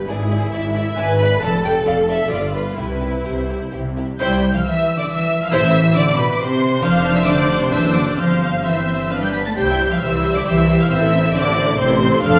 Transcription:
0.07 double bass section G#1, cello section G#2, viola section E4, violin section E4 G#4 D5
0.31 violin section E4 D5
0.51 double bass section G#1, cello section G#2, violin section E4 D5 E5
0.74 violin section E4 D5 E5
0.96 double bass section G#1, cello section G#2, violin section E4 D5 G#5, viola section B4
1.19 violin section E4 D5 B5
1.40 double bass section F1, cello section F2, violin section F4 D5 A5, viola section A4
1.64 violin section F4 D5 G5
1.84 double bass section F1, cello section F2, violin section F4 D5 F5
2.08 violin section F4 D5 E5
2.29 double bass section G1, cello section G2, viola section F4, violin section F4 B4 D5
2.54 violin section F4 B4
2.75 double bass section C2, cello section C3, viola section E4, violin section E4 G4 B4
3.01 violin section E4 G4
3.24 double bass section C2, cello section C3, violin section E4 G4 C5
3.49 violin section E4 G4
3.72 double bass section C2, cello section C3, violin section E4 G4
3.97 violin section E4 G4
4.19 double bass section C2, cello section G3, viola section E4 C5, violin section G5 G6
4.53 cello section F3, violin section F5 F6
4.64 cello section E3, violin section E5 E6
4.97 cello section D3, violin section D5 D6
5.08 cello section E3, violin section E5 E6
5.41 cello section F3, violin section F5 F6
5.51 double bass section A1, cello section E3, viola section E4 C5, violin section E5 E6
5.95 cello section D3, violin section D5 D6
6.17 cello section B2, violin section B4 B5
6.32 violin section D6
6.39 cello section C3, violin section C5 C6
6.82 double bass section F1, cello section F3, viola section D4 C5, violin section F5 F6
7.15 cello section E3, violin section E5 E6
7.26 cello section D3, viola section D4 C5, violin section D5 D6
7.60 cello section C3, violin section C5 C6
7.71 double bass section F#1, cello section E3, viola section D4 C5, violin section E5 E6
7.94 cello section D3, violin section D5 D6
8.16 double bass section G1, cello section F3, viola section C4 C5, violin section F5 F6
8.63 cello section E3, viola section C4 C5, violin section E5 E6
9.09 cello section F3, viola section D4 B4, violin section F5 F6
9.22 cello section G3, violin section G5 G6
9.33 cello section B3, violin section B5 B6
9.45 cello section A3, violin section A5 A6
9.55 double bass section C2, cello section G3, viola section G4 C5, violin section G5 G6
9.68 viola section E4 E5
9.79 viola section G4 C5
9.90 cello section F3, viola section E4 E5, violin section F5 F6
10.00 double bass section C2, cello section E3, viola section G4 C5, violin section E5 E6
10.13 viola section E4 E5
10.23 viola section G4 C5
10.34 cello section D3, viola section E4 E5, violin section D5 D6
10.45 double bass section C2, cello section E3, viola section G4 C5, violin section E5 E6
10.57 viola section E4 E5
10.68 viola section G4 C5
10.80 cello section F3, viola section E4 E5, violin section F5 F6
10.89 double bass section A1, cello section E3, viola section C4 C5, violin section E5 E6
11.01 viola section E4 A4
11.13 viola section C4 C5
11.24 viola section E4 A4
11.34 double bass section A1, cello section D3, viola section C4 C5, violin section D5 D6
11.45 viola section E4 A4
11.56 viola section C4 C5
11.67 viola section E4 A4
11.78 double bass section A1, cello section C3, viola section C4 C5, violin section C5 C6
11.89 viola section E4 A4
12.00 viola section C4 C5
12.11 viola section E4 A4
12.21 double bass section F1, cello section F3, viola section D4 A4, violin section F5 F6

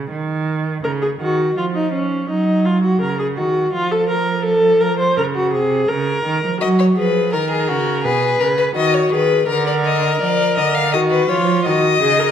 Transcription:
Already playing: cello C#3
0.11 cello D#3
0.84 cello C#3, viola A#4
1.02 viola G#4
1.20 cello D#3, viola F#4
1.56 cello F3, viola F4
1.75 viola D#4
1.93 viola C#4
2.29 cello F#3, viola D#4
2.65 viola F4
2.83 viola F#4
3.01 cello C#3, viola A#4
3.19 viola G#4
3.37 cello D#3, viola F#4
3.73 cello F3, viola F4
3.92 viola A4
4.09 viola A#4
4.45 viola A4
4.81 viola A#4
4.99 viola C5
5.17 cello C#3, viola A#4
5.35 viola F#4
5.53 cello C3, viola G#4
5.89 cello C#3, viola A#4
6.25 cello D#3
6.43 cello F3
6.61 cello F#3, viola F#4, violin D#5
6.79 violin C#5
6.97 cello F3, viola G#4, violin B4
7.33 cello D#3, violin A#4, viola A#4
7.51 violin G#4
7.68 cello C#3, violin F#4
8.04 cello B2, violin G#4, viola B4
8.40 cello C#3, violin A#4
8.57 violin B4
8.75 cello D#3, viola F#4, violin D#5
8.94 violin C#5
9.12 cello D#3, viola G#4, violin B4
9.48 cello D3, viola A#4, violin A#4
9.67 violin D5
9.85 violin D#5
10.21 cello F3, violin D5
10.57 cello D3, violin D#5
10.75 violin F5
10.93 cello D#3, viola F#4, violin D#5
11.11 violin B4
11.29 cello F3, viola F4, violin C#5
11.65 cello D#3, viola F#4, violin D#5
12.01 cello C#3, viola G#4
12.20 viola A#4

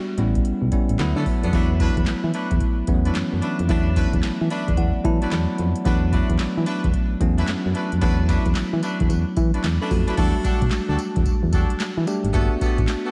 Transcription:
Already playing: tine electric piano G3 B3 D4 F#4
0.18 fm bass A1, tine electric piano G3 B3 C#4 E4, closed hi-hat
0.35 kick, closed hi-hat
0.45 closed hi-hat
0.62 fm bass B1
0.72 tine electric piano G3 B3 C#4 E4, kick, closed hi-hat
0.89 fm bass A1, closed hi-hat
0.99 fm bass D2, tine electric piano F#3 A3 B3 E4, snare, clap, closed hi-hat
1.16 fm bass D3, horn section B3 D4 F#4 A4
1.26 kick, open hi-hat
1.43 fm bass F2, horn section B3 D4 F#4 A4, closed hi-hat
1.53 fm bass E2, tine electric piano F#3 A3 B3 E4, horn section D4 E4 F#4 B4, kick, closed hi-hat
1.80 horn section D4 E4 F#4 B4, kick, closed hi-hat
1.97 fm bass E2, kick, closed hi-hat
2.06 fm bass E3, snare, clap, closed hi-hat
2.24 fm bass E3
2.34 horn section D4 E4 F#4 B4, closed hi-hat
2.51 fm bass E2, kick, closed hi-hat
2.60 kick, closed hi-hat
2.87 fm bass E2, tine electric piano E3 A3 B3 C#4, kick, closed hi-hat
2.94 tine electric piano F#3
3.05 horn section D4 E4 F#4 B4, closed hi-hat
3.15 fm bass F#2, snare, clap, closed hi-hat
3.33 fm bass F#2
3.41 horn section D4 E4 F#4 B4, closed hi-hat
3.59 fm bass F2, closed hi-hat
3.69 fm bass E2, tine electric piano F#3 A3 B3 E4, horn section D4 E4 F#4 B4, kick, closed hi-hat
3.95 horn section D4 E4 F#4 B4, kick, closed hi-hat
4.13 fm bass E2, kick, closed hi-hat
4.23 fm bass E3, snare, clap, closed hi-hat
4.41 fm bass E3
4.49 horn section D4 E4 F#4 B4, tine electric piano D5, closed hi-hat
4.68 fm bass E2, kick, closed hi-hat
4.77 fm bass E2, tine electric piano F#5, kick, closed hi-hat
5.04 fm bass E3, tine electric piano F#3 A3 B3 E4 A5, kick, closed hi-hat
5.21 horn section D4 E4 F#4 B4, closed hi-hat
5.31 fm bass E2, tine electric piano B5, snare, clap, closed hi-hat
5.58 fm bass F2, closed hi-hat
5.76 closed hi-hat
5.85 fm bass E2, tine electric piano F#3 A3 B3 D4, horn section D4 E4 F#4 B4, kick, closed hi-hat
6.12 horn section D4 E4 F#4 B4, kick, closed hi-hat
6.29 fm bass E2, kick, closed hi-hat
6.39 fm bass E3, snare, clap, closed hi-hat
6.57 fm bass E3
6.66 horn section D4 E4 F#4 B4, closed hi-hat
6.84 fm bass E2, kick, closed hi-hat
6.94 kick, closed hi-hat
7.20 fm bass E2, tine electric piano F#3 A3 B3 C#4, kick, closed hi-hat
7.38 horn section D4 E4 F#4 B4, closed hi-hat
7.47 fm bass F#2, snare, clap, closed hi-hat
7.66 fm bass F#2
7.74 horn section D4 E4 F#4 B4, closed hi-hat
7.92 fm bass F2, closed hi-hat
8.01 fm bass E2, tine electric piano F#3 A3 B3 E4, horn section D4 E4 F#4 B4, kick, closed hi-hat
8.28 horn section D4 E4 F#4 B4, kick, snare, closed hi-hat, tambourine
8.46 fm bass E2, kick, closed hi-hat
8.55 fm bass E3, snare, clap, closed hi-hat, tambourine
8.73 fm bass E3
8.82 horn section D4 E4 F#4 B4, closed hi-hat, tambourine
9.00 fm bass E2, kick, closed hi-hat
9.09 fm bass E2, closed hi-hat, tambourine
9.36 fm bass E3, kick, closed hi-hat, tambourine
9.54 horn section D4 E4 F#4 B4, closed hi-hat
9.64 fm bass E2, snare, clap, closed hi-hat, tambourine
9.81 tine electric piano C#4 A4, horn section D4 E4 F#4 B4
9.91 fm bass F2, tine electric piano A3 F#4, kick, open hi-hat, tambourine
10.07 tine electric piano F#3 D4, horn section D4 E4 F#4 B4, closed hi-hat
10.17 fm bass E2, tine electric piano G3 A3 D4 F#4, horn section D4 F#4 G4 A4, kick, closed hi-hat, crash
10.44 horn section D4 F#4 G4 A4, kick, closed hi-hat, tambourine
10.62 fm bass B1, kick, closed hi-hat
10.71 snare, clap, closed hi-hat, tambourine
10.89 fm bass D2, horn section D4 F#4 G4 A4
10.99 closed hi-hat, tambourine
11.16 fm bass E2, kick, closed hi-hat
11.26 fm bass E2, kick, closed hi-hat, tambourine
11.43 fm bass E2
11.52 horn section D4 F#4 G4 A4, kick, closed hi-hat, tambourine
11.70 closed hi-hat
11.80 snare, clap, closed hi-hat, tambourine
11.97 fm bass E3
12.07 tine electric piano G3 A3 D4 G4, closed hi-hat, tambourine
12.24 fm bass G#1, closed hi-hat
12.33 fm bass G1, tine electric piano A3 A#3 D4 F#4, horn section B3 F#4 G4 A4, kick, closed hi-hat
12.41 tine electric piano B3
12.61 horn section B3 F#4 G4 A4, kick, closed hi-hat, tambourine
12.78 fm bass A1, kick, closed hi-hat
12.88 snare, clap, closed hi-hat, tambourine
13.05 horn section B3 F#4 G4 A4

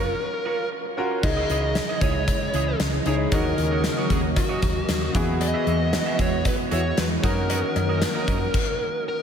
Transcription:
Already playing: fingered electric bass F#1, grand piano C#4 F4 F#4 A#4, clean electric guitar F4, lead electric guitar A#4
0.06 muted clean electric guitar stroke
0.19 muted clean electric guitar stroke
0.33 muted clean electric guitar stroke
0.45 clean electric guitar F4 A#4 C#5
0.59 muted clean electric guitar stroke
0.71 muted clean electric guitar stroke
0.85 muted clean electric guitar stroke
0.97 grand piano C#4 F4 F#4 A#4
1.11 muted clean electric guitar stroke
1.23 fingered electric bass C#2, string machine C#3 E3 G#3 D#5, grand piano C#3 C#4 D#4 E4 G#4, lead electric guitar D#5, muted clean electric guitar stroke, kick, crash, cowbell
1.37 clean electric guitar E4 G#4 D#5
1.49 fingered electric bass C#2, clean electric guitar E4 G#4 D#5, closed hi-hat
1.64 muted clean electric guitar stroke
1.75 muted clean electric guitar stroke, snare, closed hi-hat, cowbell
1.89 clean electric guitar E4 G#4 D#5
2.01 fingered electric bass C#2, clean electric guitar E4 G#4 D#5, lead electric guitar C#5, kick, closed hi-hat
2.15 muted clean electric guitar stroke
2.28 kick, closed hi-hat, cowbell
2.41 muted clean electric guitar stroke
2.54 fingered electric bass C#2, clean electric guitar E4 G#4 D#5, closed hi-hat
2.68 muted clean electric guitar stroke
2.80 fingered electric bass C#2, muted clean electric guitar stroke, snare, closed hi-hat, cowbell
2.94 muted clean electric guitar stroke
3.05 fingered electric bass C#2, grand piano C#4 D#4 E4 G#4, clean electric guitar E4 G#4 D#5, lead electric guitar C#5, closed hi-hat
3.19 muted clean electric guitar stroke
3.31 fingered electric bass D#2, grand piano D#3 C#4 D#4 F#4 A#4, string machine F#3 A#3, clean electric guitar F#4 C#5 D#5, lead electric guitar A#4, kick, closed hi-hat, cowbell
3.46 muted clean electric guitar stroke
3.58 fingered electric bass D#2, muted clean electric guitar stroke, closed hi-hat
3.71 clean electric guitar F#4 C#5 D#5
3.84 muted clean electric guitar stroke, snare, closed hi-hat, cowbell
3.98 clean electric guitar F#4 C#5 D#5
4.10 fingered electric bass D#2, clean electric guitar F#4 C#5 D#5, lead electric guitar G#4, kick, closed hi-hat
4.23 muted clean electric guitar stroke
4.36 lead electric guitar F#4, muted clean electric guitar stroke, kick, closed hi-hat, cowbell
4.49 clean electric guitar F#4 C#5 D#5
4.62 fingered electric bass D#2, muted clean electric guitar stroke, kick, closed hi-hat
4.75 muted clean electric guitar stroke
4.88 fingered electric bass D#2, muted clean electric guitar stroke, snare, closed hi-hat, cowbell
5.01 muted clean electric guitar stroke
5.14 fingered electric bass E2, string machine E3 G#3 B3 F#4, grand piano E3 B3 E4 F#4 G#4, kick, closed hi-hat
5.28 muted clean electric guitar stroke
5.41 lead electric guitar D#5, muted clean electric guitar stroke, closed hi-hat, cowbell
5.54 clean electric guitar F#4 G#4 E5
5.66 fingered electric bass E2, clean electric guitar F#4 G#4 E5, closed hi-hat
5.79 muted clean electric guitar stroke
5.93 muted clean electric guitar stroke, snare, closed hi-hat, cowbell
6.06 clean electric guitar F#4 G#4 E5
6.18 fingered electric bass E2, clean electric guitar F#4 G#4 E5, lead electric guitar C#5, kick, closed hi-hat
6.32 muted clean electric guitar stroke
6.45 lead electric guitar B4, kick, closed hi-hat, cowbell
6.58 muted clean electric guitar stroke
6.71 fingered electric bass E2, clean electric guitar F#4 G#4 E5, lead electric guitar C#5, closed hi-hat
6.84 muted clean electric guitar stroke
6.97 fingered electric bass E2, lead electric guitar B4, muted clean electric guitar stroke, snare, closed hi-hat, cowbell
7.10 muted clean electric guitar stroke
7.23 fingered electric bass F#2, string machine D#3 A#3 C#4, grand piano C#4 D#4 F#4 A#4, clean electric guitar F#4 A#4 D#5, lead electric guitar A#4, kick, closed hi-hat
7.36 muted clean electric guitar stroke
7.49 clean electric guitar F#4 A#4 D#5, closed hi-hat, cowbell
7.62 muted clean electric guitar stroke
7.76 fingered electric bass F#2, muted clean electric guitar stroke, closed hi-hat, cowbell
7.89 clean electric guitar F#4 A#4 D#5
8.02 muted clean electric guitar stroke, snare, closed hi-hat, tambourine, cowbell
8.15 clean electric guitar F#4 A#4 D#5
8.27 fingered electric bass F#2, clean electric guitar F#4 A#4 D#5, kick, closed hi-hat, cowbell
8.40 muted clean electric guitar stroke
8.54 kick, crash
9.08 lead electric guitar A#4

